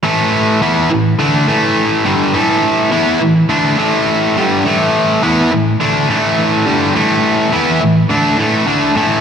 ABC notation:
X:1
M:4/4
L:1/8
Q:1/4=104
K:C
V:1 name="Overdriven electric guitar" clef=bass
[A,,E,A,]2 [E,B,E] [A,,E,] [D,A,D] [A,,E,A,]2 [G,,D,G,] | [A,,E,A,]2 [E,B,E] [A,,E,] [D,A,D] [A,,E,A,]2 [G,,D,G,] | [A,,E,A,]2 [E,B,E] [A,,E,] [D,A,D] [A,,E,A,]2 [G,,D,G,] | [A,,E,A,]2 [E,B,E] [A,,E,] [D,A,D] [A,,E,A,] [D,A,D] [A,,E,A,] |]